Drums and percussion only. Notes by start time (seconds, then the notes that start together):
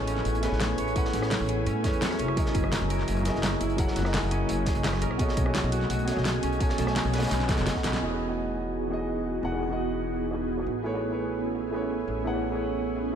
0.07 closed hi-hat
0.16 snare
0.25 closed hi-hat
0.35 closed hi-hat
0.43 snare, closed hi-hat
0.53 snare
0.60 snare, closed hi-hat
0.78 closed hi-hat
0.88 closed hi-hat
0.96 kick, closed hi-hat
1.05 snare
1.13 snare, closed hi-hat
1.22 cross-stick, snare
1.31 snare, closed hi-hat, open hi-hat
1.49 closed hi-hat
1.66 closed hi-hat
1.84 kick, snare, closed hi-hat
1.93 closed hi-hat
2.02 snare, closed hi-hat
2.11 cross-stick, snare
2.19 closed hi-hat
2.28 cross-stick
2.37 kick, closed hi-hat
2.46 snare
2.54 kick, closed hi-hat
2.64 cross-stick
2.72 snare, closed hi-hat
2.90 closed hi-hat
2.99 snare
3.08 closed hi-hat
3.17 closed hi-hat
3.25 snare, closed hi-hat
3.35 snare
3.43 snare, closed hi-hat
3.61 closed hi-hat
3.70 closed hi-hat
3.78 kick, closed hi-hat
3.88 snare
3.96 snare, closed hi-hat
4.05 cross-stick, snare
4.14 snare, closed hi-hat, open hi-hat
4.31 closed hi-hat
4.49 closed hi-hat
4.66 kick, snare, closed hi-hat
4.75 closed hi-hat
4.84 snare, closed hi-hat
4.93 cross-stick, snare
5.01 closed hi-hat
5.11 cross-stick
5.19 kick, closed hi-hat
5.29 snare
5.37 kick, closed hi-hat
5.46 cross-stick
5.55 snare, closed hi-hat
5.72 closed hi-hat
5.81 snare
5.90 closed hi-hat
5.99 closed hi-hat
6.07 snare, closed hi-hat
6.17 snare
6.25 snare, closed hi-hat
6.43 closed hi-hat
6.52 closed hi-hat
6.60 kick, closed hi-hat
6.69 snare
6.78 snare, closed hi-hat
6.87 cross-stick, snare
6.96 snare, closed hi-hat, open hi-hat
7.13 snare, closed hi-hat
7.18 snare, closed hi-hat
7.22 snare, closed hi-hat
7.27 snare, closed hi-hat
7.31 snare, closed hi-hat
7.40 snare
7.49 kick, snare, closed hi-hat
7.57 snare, closed hi-hat
7.66 snare, closed hi-hat
7.75 kick, snare
7.83 snare, closed hi-hat
7.93 snare
8.02 closed hi-hat
8.11 snare
8.19 closed hi-hat
8.37 closed hi-hat
8.54 closed hi-hat
8.72 closed hi-hat
8.81 closed hi-hat
8.90 snare, closed hi-hat
8.99 snare
9.08 closed hi-hat
9.26 closed hi-hat
9.35 closed hi-hat
9.43 closed hi-hat
9.52 snare
9.61 snare, closed hi-hat
9.70 snare
9.78 open hi-hat
10.13 closed hi-hat
10.31 snare, closed hi-hat
10.40 closed hi-hat
10.49 closed hi-hat
10.57 snare
10.67 closed hi-hat
10.84 closed hi-hat
10.94 snare
11.01 closed hi-hat
11.19 closed hi-hat
11.37 closed hi-hat
11.55 closed hi-hat
11.64 closed hi-hat
11.73 snare, closed hi-hat
11.81 snare
11.90 closed hi-hat
12.07 closed hi-hat
12.16 closed hi-hat
12.26 closed hi-hat
12.34 snare
12.42 snare, closed hi-hat
12.52 snare
12.60 open hi-hat
12.78 closed hi-hat
12.96 closed hi-hat